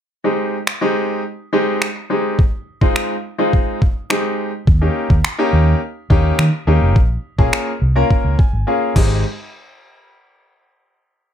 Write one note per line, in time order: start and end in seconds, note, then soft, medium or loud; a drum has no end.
0.24 0.56 G#3 medium
0.24 0.56 C4 medium
0.24 0.56 D#4 medium
0.24 0.56 G4 medium
0.67 finger snap loud
0.81 1.21 G#3 loud
0.81 1.21 C4 medium
0.81 1.21 D#4 medium
0.81 1.21 G4 loud
1.53 1.85 G#3 medium
1.53 1.85 C4 medium
1.53 1.85 D#4 medium
1.53 1.85 G4 loud
1.82 finger snap loud
2.10 2.39 G#3 medium
2.10 2.39 C4 medium
2.10 2.39 D#4 medium
2.10 2.39 G4 medium
2.39 kick loud
2.81 3.13 G#3 medium
2.81 3.13 C4 medium
2.81 3.13 D#4 medium
2.81 3.13 F4 loud
2.81 kick medium
2.96 finger snap loud
3.38 3.78 G#3 medium
3.38 3.78 C4 medium
3.38 3.78 D#4 medium
3.38 3.79 F4 loud
3.53 kick medium
3.82 kick loud
4.10 4.50 G#3 medium
4.10 4.50 C4 medium
4.10 4.50 D#4 medium
4.10 4.50 G4 medium
4.10 finger snap loud
4.67 4.88 D#2 loud
4.67 kick loud
4.81 5.13 A#3 medium
4.81 5.13 C#4 medium
4.81 5.13 D#4 medium
4.81 5.13 G4 medium
5.10 5.20 D#2 medium
5.10 kick medium
5.25 finger snap loud
5.38 5.78 A#3 loud
5.38 5.78 C#4 medium
5.38 5.78 D#4 medium
5.38 5.79 G4 loud
5.53 5.73 D#2 medium
6.10 6.31 D#2 medium
6.10 6.42 A#3 medium
6.10 6.42 C#4 medium
6.10 6.42 D#4 medium
6.10 6.42 G4 loud
6.10 kick medium
6.39 6.49 D#3 medium
6.39 finger snap loud
6.67 6.77 D#2 medium
6.67 6.96 A#3 medium
6.67 6.96 C#4 medium
6.67 6.96 D#4 medium
6.67 6.96 G4 medium
6.82 6.96 F1 medium
6.96 7.16 A#1 loud
6.96 kick loud
7.38 7.49 A#1 medium
7.38 7.70 A#3 medium
7.38 7.70 C#4 medium
7.38 7.70 F4 medium
7.38 7.71 G#4 loud
7.38 kick loud
7.53 finger snap loud
7.82 8.02 C2 medium
7.96 8.35 A#3 medium
7.96 8.35 C#4 medium
7.96 8.36 F4 medium
7.96 8.36 A#4 loud
8.11 kick medium
8.24 8.35 C#2 medium
8.39 8.65 G#5 medium
8.39 kick loud
8.53 8.63 G#1 medium
8.67 8.96 A#3 medium
8.67 8.96 C#4 medium
8.67 8.96 F4 medium
8.67 8.96 G#4 medium
8.67 8.94 F5 medium
8.96 9.22 G#1 loud
8.96 9.23 G#3 medium
8.96 9.23 C4 medium
8.96 9.22 D#4 medium
8.96 9.23 G4 medium
8.96 kick loud
8.96 crash medium